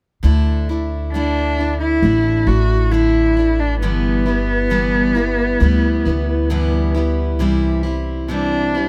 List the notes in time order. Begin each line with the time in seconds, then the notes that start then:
0.23 D2 D3 A3 D4 E4
0.69 A3 D4 E4
1.13 D3 A3 D4 E4
1.58 A3 D4 E4
1.80 E4
2.02 A1 D3 A3 D4 E4
2.47 A1 A3 D4 E4 F#4
2.91 D3 A3 D4 E4
3.37 A3 D4 E4
3.60 D4
3.81 G1 G2 D3 E3 G3 B3 E4
4.26 E3 G3 B3 E4
4.70 G2 D3 E3 G3 B3 E4
5.15 E3 G3 B3 E4
5.60 D2 E3 G3 B3 E4
6.05 D2 E3 G3 B3 E4
6.50 G2 D3 E3 G3 B3 E4
6.95 E3 G3 B3 E4
7.39 C2 C3 E3 G3 C4 E4
7.83 G3 C4 E4
8.28 C3 E3 G3 C4 D4 E4
8.75 G3 C4 E4